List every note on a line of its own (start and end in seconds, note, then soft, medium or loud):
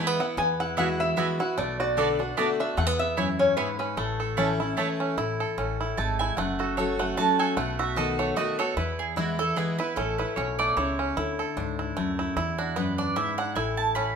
0.00 0.18 E3 medium
0.00 0.19 G#3 medium
0.00 0.19 B3 medium
0.00 0.18 E4 loud
0.00 0.19 E4 medium
0.07 0.37 B3 medium
0.19 0.38 B3 soft
0.19 0.37 E4 medium
0.19 0.38 E4 medium
0.19 0.38 F#5 medium
0.37 1.12 E2 medium
0.37 1.14 E2 medium
0.37 1.17 B3 medium
0.37 0.60 G#5 loud
0.60 0.77 E4 medium
0.60 0.77 F#5 medium
0.77 1.15 E3 medium
0.77 1.16 G#3 loud
0.77 0.87 B3 medium
0.77 1.17 B3 medium
0.77 0.99 E4 medium
0.77 0.87 F#4 medium
0.77 1.17 F#4 loud
0.77 0.88 E5 medium
0.77 1.01 F#5 medium
0.77 0.88 G#5 loud
1.00 1.39 E4 medium
1.00 1.41 E5 medium
1.16 1.38 E3 medium
1.16 1.39 G#3 medium
1.16 1.27 B3 medium
1.16 1.57 B3 medium
1.16 1.39 B3 medium
1.16 1.27 F#4 loud
1.16 1.38 F#4 loud
1.16 1.28 E5 loud
1.16 1.28 G#5 medium
1.39 1.58 B3 medium
1.39 1.58 E4 medium
1.39 1.57 F#4 medium
1.39 1.58 F#5 medium
1.57 2.32 B1 medium
1.57 2.34 B2 medium
1.57 2.15 A3 medium
1.57 1.79 D5 medium
1.80 2.34 F#4 medium
1.80 2.17 D5 medium
1.97 2.19 D3 medium
1.97 2.19 A3 medium
1.97 2.07 B3 medium
1.97 2.19 B3 medium
1.97 2.08 F#4 medium
1.97 2.18 F#4 loud
1.97 2.55 A4 medium
1.97 2.08 D5 loud
1.97 2.08 A5 loud
2.19 2.37 B3 soft
2.19 2.59 D4 medium
2.19 2.36 F#4 medium
2.37 2.59 D3 medium
2.37 2.76 A3 medium
2.37 2.59 A3 medium
2.37 2.47 B3 medium
2.37 2.59 B3 loud
2.37 2.47 F#4 loud
2.37 2.58 F#4 loud
2.37 2.48 D5 loud
2.37 2.48 A5 loud
2.59 2.78 B3 soft
2.59 2.78 D4 medium
2.59 2.77 F#4 medium
2.59 2.78 E5 medium
2.77 3.17 E2 medium
2.77 3.52 E2 medium
2.77 2.86 A3 medium
2.77 2.98 F#5 loud
2.86 3.18 B3 medium
2.99 3.41 E5 loud
3.17 3.56 F#2 medium
3.17 3.27 B3 loud
3.17 4.57 E4 medium
3.17 3.28 E4 medium
3.17 3.28 C#5 medium
3.17 3.28 G#5 loud
3.39 3.79 C#4 medium
3.39 3.56 C#5 medium
3.57 3.96 G#2 medium
3.57 3.67 B3 medium
3.57 3.97 B3 medium
3.57 3.67 E4 loud
3.57 3.78 B4 medium
3.57 3.67 C#5 loud
3.57 3.68 G#5 loud
3.79 4.37 C#4 medium
3.79 3.98 B4 medium
3.97 4.71 A1 loud
3.97 4.74 A2 medium
3.97 4.55 A3 medium
3.97 4.73 A4 medium
4.20 4.74 A4 medium
4.37 4.59 E3 medium
4.37 4.47 A3 medium
4.37 4.59 A3 medium
4.37 4.95 C#4 medium
4.37 4.59 C#4 loud
4.37 4.47 E4 medium
4.37 4.58 E4 loud
4.37 4.48 C#5 loud
4.37 4.48 A5 loud
4.60 4.78 C#4 soft
4.60 4.77 E4 medium
4.60 5.14 E4 medium
4.77 5.15 E3 medium
4.77 4.87 A3 medium
4.77 5.18 A3 medium
4.77 5.16 A3 medium
4.77 5.16 C#4 medium
4.77 4.87 E4 medium
4.77 5.17 E4 medium
4.77 4.87 C#5 medium
4.77 4.88 A5 medium
5.00 5.18 C#4 medium
5.17 5.42 A1 medium
5.17 5.56 A2 medium
5.17 5.75 E4 medium
5.40 6.78 A4 medium
5.57 5.91 A1 medium
5.57 5.96 A2 loud
5.57 6.15 C#4 medium
5.81 6.19 E4 medium
5.97 6.31 G#1 medium
5.97 6.36 G#3 medium
5.97 6.38 A3 medium
5.97 6.19 A5 medium
6.19 6.38 E4 medium
6.19 6.37 G#5 loud
6.37 7.11 F#1 medium
6.37 7.14 F#2 medium
6.37 6.95 A3 medium
6.37 6.59 F#5 medium
6.59 7.14 F#4 medium
6.59 6.76 A4 medium
6.77 6.99 F#3 medium
6.77 6.99 A3 medium
6.77 6.99 C#4 loud
6.77 6.99 F#4 loud
6.77 7.35 A4 medium
6.77 6.99 C#5 medium
6.99 7.54 A3 medium
6.99 7.18 C#4 soft
6.99 7.17 F#4 medium
6.99 7.17 F#5 medium
7.17 7.56 F#3 medium
7.17 7.56 A3 medium
7.17 7.57 C#4 medium
7.17 7.57 F#4 medium
7.17 7.57 F#4 loud
7.17 7.39 A5 loud
7.39 7.57 A4 medium
7.39 7.56 G#5 medium
7.57 8.31 B1 medium
7.57 8.34 B2 loud
7.57 8.15 A3 medium
7.57 7.79 F#5 medium
7.79 8.34 F#4 medium
7.79 7.96 E5 medium
7.96 8.35 D#3 medium
7.96 8.35 A3 medium
7.96 8.36 B3 loud
7.96 8.36 F#4 loud
7.96 8.55 A4 medium
7.96 8.18 D#5 medium
8.19 8.73 A3 medium
8.19 8.36 C#5 medium
8.36 8.58 D#3 medium
8.36 8.58 A3 medium
8.36 8.59 B3 medium
8.36 8.77 F#4 medium
8.36 8.58 F#4 loud
8.36 8.58 D#5 loud
8.59 8.77 B3 soft
8.59 8.76 F#4 medium
8.59 8.77 A4 medium
8.59 8.76 C#5 loud
8.77 9.51 E2 medium
8.77 9.53 E2 medium
8.77 9.17 E4 medium
8.77 8.98 B4 medium
8.99 9.16 G#4 medium
9.16 9.38 E3 medium
9.16 9.38 G#3 loud
9.16 9.39 B3 medium
9.16 9.39 E4 medium
9.16 9.37 E4 medium
9.16 9.39 F#4 medium
9.39 9.56 B3 soft
9.39 9.56 E4 medium
9.39 9.79 E4 medium
9.39 9.56 A4 loud
9.56 9.78 E3 medium
9.56 9.78 G#3 medium
9.56 9.97 B3 medium
9.56 9.79 B3 medium
9.56 9.77 E4 loud
9.56 9.78 G#4 medium
9.78 9.97 B3 medium
9.78 9.96 E4 medium
9.78 10.19 E4 medium
9.78 9.96 B4 medium
9.96 10.22 A1 medium
9.96 10.73 A2 medium
9.96 10.36 C#4 medium
9.96 10.18 A4 medium
10.18 10.77 E4 medium
10.18 10.36 B4 medium
10.36 10.71 B1 medium
10.36 10.75 B2 medium
10.36 10.95 C#4 medium
10.36 10.58 C#5 medium
10.59 11.13 A3 medium
10.59 10.76 D5 loud
10.77 11.11 C#2 medium
10.77 11.15 C#3 medium
10.77 11.17 E4 medium
10.77 11.92 C#5 medium
10.99 11.17 C#4 medium
11.17 11.41 D2 loud
11.17 11.93 D3 medium
11.17 11.79 E4 medium
11.39 11.93 A4 medium
11.57 11.91 C#2 medium
11.57 11.95 G#2 medium
11.57 12.15 D4 medium
11.79 12.19 E4 medium
11.96 12.30 D2 medium
11.96 12.35 F#2 medium
11.96 12.36 A3 medium
12.19 12.36 E4 medium
12.36 13.10 E2 loud
12.36 12.76 E2 loud
12.36 12.94 E4 medium
12.58 12.98 D4 medium
12.58 12.76 F#4 medium
12.76 13.15 F#2 medium
12.76 13.34 B3 medium
12.76 12.98 B4 medium
12.98 13.38 D4 medium
12.98 13.16 D5 loud
13.16 13.54 G#2 medium
13.16 13.55 E4 medium
13.16 13.37 E5 medium
13.38 13.56 D4 medium
13.38 13.55 F#5 medium
13.55 14.16 A1 medium
13.55 13.95 A2 loud
13.55 14.14 E4 medium
13.55 13.77 G#5 medium
13.77 13.95 A5 medium
13.95 14.16 A2 medium
13.95 14.16 C#4 medium
13.95 14.16 B5 loud